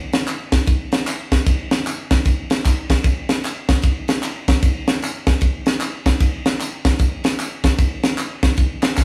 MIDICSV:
0, 0, Header, 1, 2, 480
1, 0, Start_track
1, 0, Tempo, 395257
1, 1779, Time_signature, 4, 2, 24, 8
1, 10979, End_track
2, 0, Start_track
2, 0, Title_t, "Drums"
2, 155, Note_on_c, 9, 54, 60
2, 161, Note_on_c, 9, 53, 63
2, 164, Note_on_c, 9, 38, 120
2, 276, Note_off_c, 9, 54, 0
2, 282, Note_off_c, 9, 53, 0
2, 285, Note_off_c, 9, 38, 0
2, 334, Note_on_c, 9, 39, 92
2, 334, Note_on_c, 9, 54, 88
2, 342, Note_on_c, 9, 53, 74
2, 456, Note_off_c, 9, 39, 0
2, 456, Note_off_c, 9, 54, 0
2, 463, Note_off_c, 9, 53, 0
2, 633, Note_on_c, 9, 38, 121
2, 633, Note_on_c, 9, 53, 69
2, 638, Note_on_c, 9, 36, 105
2, 655, Note_on_c, 9, 54, 47
2, 755, Note_off_c, 9, 38, 0
2, 755, Note_off_c, 9, 53, 0
2, 760, Note_off_c, 9, 36, 0
2, 776, Note_off_c, 9, 54, 0
2, 806, Note_on_c, 9, 53, 69
2, 819, Note_on_c, 9, 36, 127
2, 819, Note_on_c, 9, 54, 75
2, 927, Note_off_c, 9, 53, 0
2, 940, Note_off_c, 9, 54, 0
2, 941, Note_off_c, 9, 36, 0
2, 1114, Note_on_c, 9, 53, 68
2, 1125, Note_on_c, 9, 38, 127
2, 1138, Note_on_c, 9, 54, 56
2, 1236, Note_off_c, 9, 53, 0
2, 1246, Note_off_c, 9, 38, 0
2, 1260, Note_off_c, 9, 54, 0
2, 1297, Note_on_c, 9, 53, 84
2, 1302, Note_on_c, 9, 39, 94
2, 1302, Note_on_c, 9, 54, 100
2, 1418, Note_off_c, 9, 53, 0
2, 1424, Note_off_c, 9, 39, 0
2, 1424, Note_off_c, 9, 54, 0
2, 1600, Note_on_c, 9, 36, 93
2, 1601, Note_on_c, 9, 53, 71
2, 1602, Note_on_c, 9, 38, 123
2, 1617, Note_on_c, 9, 54, 55
2, 1722, Note_off_c, 9, 36, 0
2, 1723, Note_off_c, 9, 38, 0
2, 1723, Note_off_c, 9, 53, 0
2, 1738, Note_off_c, 9, 54, 0
2, 1778, Note_on_c, 9, 53, 95
2, 1780, Note_on_c, 9, 36, 127
2, 1788, Note_on_c, 9, 54, 75
2, 1900, Note_off_c, 9, 53, 0
2, 1901, Note_off_c, 9, 36, 0
2, 1909, Note_off_c, 9, 54, 0
2, 2078, Note_on_c, 9, 53, 59
2, 2081, Note_on_c, 9, 38, 117
2, 2100, Note_on_c, 9, 54, 60
2, 2199, Note_off_c, 9, 53, 0
2, 2202, Note_off_c, 9, 38, 0
2, 2222, Note_off_c, 9, 54, 0
2, 2260, Note_on_c, 9, 53, 68
2, 2270, Note_on_c, 9, 39, 94
2, 2270, Note_on_c, 9, 54, 90
2, 2382, Note_off_c, 9, 53, 0
2, 2391, Note_off_c, 9, 39, 0
2, 2391, Note_off_c, 9, 54, 0
2, 2560, Note_on_c, 9, 38, 113
2, 2560, Note_on_c, 9, 53, 63
2, 2561, Note_on_c, 9, 36, 105
2, 2573, Note_on_c, 9, 54, 49
2, 2682, Note_off_c, 9, 36, 0
2, 2682, Note_off_c, 9, 38, 0
2, 2682, Note_off_c, 9, 53, 0
2, 2695, Note_off_c, 9, 54, 0
2, 2731, Note_on_c, 9, 53, 70
2, 2741, Note_on_c, 9, 36, 119
2, 2752, Note_on_c, 9, 54, 77
2, 2852, Note_off_c, 9, 53, 0
2, 2862, Note_off_c, 9, 36, 0
2, 2874, Note_off_c, 9, 54, 0
2, 3036, Note_on_c, 9, 53, 71
2, 3046, Note_on_c, 9, 38, 127
2, 3065, Note_on_c, 9, 54, 56
2, 3157, Note_off_c, 9, 53, 0
2, 3168, Note_off_c, 9, 38, 0
2, 3187, Note_off_c, 9, 54, 0
2, 3220, Note_on_c, 9, 53, 86
2, 3223, Note_on_c, 9, 36, 100
2, 3225, Note_on_c, 9, 39, 98
2, 3225, Note_on_c, 9, 54, 88
2, 3341, Note_off_c, 9, 53, 0
2, 3345, Note_off_c, 9, 36, 0
2, 3346, Note_off_c, 9, 39, 0
2, 3346, Note_off_c, 9, 54, 0
2, 3518, Note_on_c, 9, 36, 90
2, 3524, Note_on_c, 9, 38, 118
2, 3524, Note_on_c, 9, 53, 72
2, 3539, Note_on_c, 9, 54, 56
2, 3640, Note_off_c, 9, 36, 0
2, 3645, Note_off_c, 9, 53, 0
2, 3646, Note_off_c, 9, 38, 0
2, 3660, Note_off_c, 9, 54, 0
2, 3692, Note_on_c, 9, 53, 87
2, 3696, Note_on_c, 9, 36, 115
2, 3722, Note_on_c, 9, 54, 73
2, 3814, Note_off_c, 9, 53, 0
2, 3818, Note_off_c, 9, 36, 0
2, 3843, Note_off_c, 9, 54, 0
2, 3995, Note_on_c, 9, 53, 64
2, 3997, Note_on_c, 9, 38, 110
2, 4017, Note_on_c, 9, 54, 54
2, 4116, Note_off_c, 9, 53, 0
2, 4119, Note_off_c, 9, 38, 0
2, 4138, Note_off_c, 9, 54, 0
2, 4174, Note_on_c, 9, 53, 76
2, 4193, Note_on_c, 9, 39, 83
2, 4193, Note_on_c, 9, 54, 89
2, 4296, Note_off_c, 9, 53, 0
2, 4314, Note_off_c, 9, 39, 0
2, 4314, Note_off_c, 9, 54, 0
2, 4477, Note_on_c, 9, 38, 110
2, 4477, Note_on_c, 9, 53, 63
2, 4479, Note_on_c, 9, 36, 104
2, 4500, Note_on_c, 9, 54, 49
2, 4599, Note_off_c, 9, 38, 0
2, 4599, Note_off_c, 9, 53, 0
2, 4601, Note_off_c, 9, 36, 0
2, 4622, Note_off_c, 9, 54, 0
2, 4641, Note_on_c, 9, 53, 77
2, 4653, Note_on_c, 9, 54, 74
2, 4659, Note_on_c, 9, 36, 121
2, 4763, Note_off_c, 9, 53, 0
2, 4774, Note_off_c, 9, 54, 0
2, 4780, Note_off_c, 9, 36, 0
2, 4955, Note_on_c, 9, 53, 74
2, 4965, Note_on_c, 9, 38, 127
2, 4966, Note_on_c, 9, 54, 55
2, 5076, Note_off_c, 9, 53, 0
2, 5087, Note_off_c, 9, 38, 0
2, 5087, Note_off_c, 9, 54, 0
2, 5135, Note_on_c, 9, 39, 99
2, 5135, Note_on_c, 9, 54, 101
2, 5139, Note_on_c, 9, 53, 87
2, 5257, Note_off_c, 9, 39, 0
2, 5257, Note_off_c, 9, 54, 0
2, 5260, Note_off_c, 9, 53, 0
2, 5441, Note_on_c, 9, 36, 99
2, 5446, Note_on_c, 9, 38, 112
2, 5446, Note_on_c, 9, 53, 73
2, 5457, Note_on_c, 9, 54, 57
2, 5563, Note_off_c, 9, 36, 0
2, 5567, Note_off_c, 9, 53, 0
2, 5568, Note_off_c, 9, 38, 0
2, 5579, Note_off_c, 9, 54, 0
2, 5618, Note_on_c, 9, 53, 87
2, 5620, Note_on_c, 9, 36, 127
2, 5637, Note_on_c, 9, 54, 67
2, 5739, Note_off_c, 9, 53, 0
2, 5741, Note_off_c, 9, 36, 0
2, 5759, Note_off_c, 9, 54, 0
2, 5920, Note_on_c, 9, 53, 60
2, 5923, Note_on_c, 9, 38, 118
2, 5945, Note_on_c, 9, 54, 56
2, 6041, Note_off_c, 9, 53, 0
2, 6044, Note_off_c, 9, 38, 0
2, 6066, Note_off_c, 9, 54, 0
2, 6100, Note_on_c, 9, 53, 75
2, 6116, Note_on_c, 9, 39, 92
2, 6116, Note_on_c, 9, 54, 90
2, 6222, Note_off_c, 9, 53, 0
2, 6238, Note_off_c, 9, 39, 0
2, 6238, Note_off_c, 9, 54, 0
2, 6397, Note_on_c, 9, 38, 109
2, 6397, Note_on_c, 9, 53, 64
2, 6400, Note_on_c, 9, 36, 108
2, 6412, Note_on_c, 9, 54, 52
2, 6518, Note_off_c, 9, 38, 0
2, 6518, Note_off_c, 9, 53, 0
2, 6521, Note_off_c, 9, 36, 0
2, 6533, Note_off_c, 9, 54, 0
2, 6567, Note_on_c, 9, 53, 71
2, 6567, Note_on_c, 9, 54, 76
2, 6579, Note_on_c, 9, 36, 112
2, 6689, Note_off_c, 9, 53, 0
2, 6689, Note_off_c, 9, 54, 0
2, 6701, Note_off_c, 9, 36, 0
2, 6871, Note_on_c, 9, 53, 70
2, 6882, Note_on_c, 9, 38, 123
2, 6889, Note_on_c, 9, 54, 55
2, 6993, Note_off_c, 9, 53, 0
2, 7003, Note_off_c, 9, 38, 0
2, 7011, Note_off_c, 9, 54, 0
2, 7051, Note_on_c, 9, 39, 95
2, 7051, Note_on_c, 9, 54, 96
2, 7058, Note_on_c, 9, 53, 83
2, 7172, Note_off_c, 9, 39, 0
2, 7172, Note_off_c, 9, 54, 0
2, 7179, Note_off_c, 9, 53, 0
2, 7357, Note_on_c, 9, 36, 94
2, 7361, Note_on_c, 9, 38, 127
2, 7361, Note_on_c, 9, 53, 74
2, 7371, Note_on_c, 9, 54, 56
2, 7479, Note_off_c, 9, 36, 0
2, 7482, Note_off_c, 9, 53, 0
2, 7483, Note_off_c, 9, 38, 0
2, 7492, Note_off_c, 9, 54, 0
2, 7532, Note_on_c, 9, 53, 92
2, 7536, Note_on_c, 9, 36, 127
2, 7551, Note_on_c, 9, 54, 69
2, 7654, Note_off_c, 9, 53, 0
2, 7657, Note_off_c, 9, 36, 0
2, 7672, Note_off_c, 9, 54, 0
2, 7839, Note_on_c, 9, 53, 61
2, 7842, Note_on_c, 9, 38, 127
2, 7854, Note_on_c, 9, 54, 56
2, 7961, Note_off_c, 9, 53, 0
2, 7964, Note_off_c, 9, 38, 0
2, 7976, Note_off_c, 9, 54, 0
2, 8018, Note_on_c, 9, 53, 76
2, 8022, Note_on_c, 9, 39, 90
2, 8022, Note_on_c, 9, 54, 95
2, 8139, Note_off_c, 9, 53, 0
2, 8143, Note_off_c, 9, 39, 0
2, 8143, Note_off_c, 9, 54, 0
2, 8318, Note_on_c, 9, 36, 105
2, 8318, Note_on_c, 9, 38, 122
2, 8318, Note_on_c, 9, 53, 66
2, 8334, Note_on_c, 9, 54, 48
2, 8439, Note_off_c, 9, 36, 0
2, 8439, Note_off_c, 9, 38, 0
2, 8439, Note_off_c, 9, 53, 0
2, 8455, Note_off_c, 9, 54, 0
2, 8487, Note_on_c, 9, 53, 69
2, 8497, Note_on_c, 9, 36, 115
2, 8510, Note_on_c, 9, 54, 82
2, 8608, Note_off_c, 9, 53, 0
2, 8618, Note_off_c, 9, 36, 0
2, 8631, Note_off_c, 9, 54, 0
2, 8791, Note_on_c, 9, 53, 78
2, 8802, Note_on_c, 9, 38, 126
2, 8821, Note_on_c, 9, 54, 57
2, 8913, Note_off_c, 9, 53, 0
2, 8924, Note_off_c, 9, 38, 0
2, 8943, Note_off_c, 9, 54, 0
2, 8973, Note_on_c, 9, 53, 78
2, 8982, Note_on_c, 9, 39, 90
2, 8982, Note_on_c, 9, 54, 94
2, 9094, Note_off_c, 9, 53, 0
2, 9103, Note_off_c, 9, 39, 0
2, 9103, Note_off_c, 9, 54, 0
2, 9276, Note_on_c, 9, 36, 101
2, 9282, Note_on_c, 9, 38, 123
2, 9282, Note_on_c, 9, 53, 72
2, 9293, Note_on_c, 9, 54, 57
2, 9398, Note_off_c, 9, 36, 0
2, 9403, Note_off_c, 9, 53, 0
2, 9404, Note_off_c, 9, 38, 0
2, 9415, Note_off_c, 9, 54, 0
2, 9454, Note_on_c, 9, 53, 93
2, 9455, Note_on_c, 9, 36, 127
2, 9470, Note_on_c, 9, 54, 68
2, 9576, Note_off_c, 9, 53, 0
2, 9577, Note_off_c, 9, 36, 0
2, 9592, Note_off_c, 9, 54, 0
2, 9756, Note_on_c, 9, 53, 61
2, 9759, Note_on_c, 9, 38, 118
2, 9761, Note_on_c, 9, 54, 52
2, 9877, Note_off_c, 9, 53, 0
2, 9880, Note_off_c, 9, 38, 0
2, 9882, Note_off_c, 9, 54, 0
2, 9933, Note_on_c, 9, 39, 94
2, 9933, Note_on_c, 9, 54, 93
2, 9937, Note_on_c, 9, 53, 74
2, 10054, Note_off_c, 9, 39, 0
2, 10054, Note_off_c, 9, 54, 0
2, 10059, Note_off_c, 9, 53, 0
2, 10236, Note_on_c, 9, 36, 104
2, 10236, Note_on_c, 9, 38, 110
2, 10236, Note_on_c, 9, 53, 63
2, 10242, Note_on_c, 9, 54, 49
2, 10357, Note_off_c, 9, 38, 0
2, 10357, Note_off_c, 9, 53, 0
2, 10358, Note_off_c, 9, 36, 0
2, 10363, Note_off_c, 9, 54, 0
2, 10405, Note_on_c, 9, 54, 75
2, 10411, Note_on_c, 9, 53, 76
2, 10417, Note_on_c, 9, 36, 115
2, 10526, Note_off_c, 9, 54, 0
2, 10532, Note_off_c, 9, 53, 0
2, 10539, Note_off_c, 9, 36, 0
2, 10711, Note_on_c, 9, 53, 74
2, 10720, Note_on_c, 9, 39, 78
2, 10720, Note_on_c, 9, 54, 52
2, 10721, Note_on_c, 9, 38, 127
2, 10832, Note_off_c, 9, 53, 0
2, 10842, Note_off_c, 9, 39, 0
2, 10842, Note_off_c, 9, 54, 0
2, 10843, Note_off_c, 9, 38, 0
2, 10888, Note_on_c, 9, 39, 91
2, 10888, Note_on_c, 9, 54, 96
2, 10900, Note_on_c, 9, 38, 65
2, 10903, Note_on_c, 9, 36, 97
2, 10979, Note_off_c, 9, 36, 0
2, 10979, Note_off_c, 9, 38, 0
2, 10979, Note_off_c, 9, 39, 0
2, 10979, Note_off_c, 9, 54, 0
2, 10979, End_track
0, 0, End_of_file